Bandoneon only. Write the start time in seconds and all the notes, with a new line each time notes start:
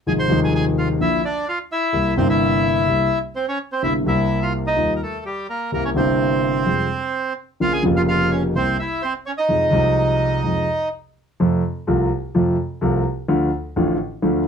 0.08 G#4 G#5
0.19 C5 C6
0.44 G#4 G#5
0.55 G#4 G#5
0.78 F4 F5
1.01 E4 E5
1.25 D4 D5
1.49 F4 F5
1.72 E4 E5
2.17 C4 C5
2.29 E4 E5
3.36 C4 C5
3.48 C#4 C#5
3.72 C4 C5
3.83 E4 E5
4.08 E4 E5
4.42 F4 F5
4.67 D#4 D#5
4.96 A#4
5.03 A3 A4
5.26 G3 G4
5.50 A#3 A#4
5.74 A#3 A#4
5.85 C#4 C#5
5.97 C4 C5
7.62 F4 F5
7.73 G#4 G#5
7.96 F4 F5
8.08 F4 F5
8.31 C#4 C#5
8.56 C4 C5
8.79 E4 E5
9.02 C4 C5
9.26 C#4 C#5
9.38 D#4 D#5